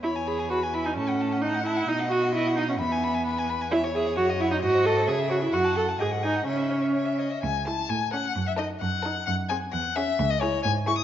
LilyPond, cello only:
\new Staff \with { instrumentName = "Cello" } { \clef bass \time 2/4 \key e \major \tempo 4 = 131 e,2 | a,2 | b,2 | e,2~ |
\key cis \minor e,4 fis,4 | gis,4 cis4 | fis,4 gis,4 | cis4. r8 |
cis,4 a,4 | fis,4 fis,4 | fis,4 e,4 | cis,4 gis,4 | }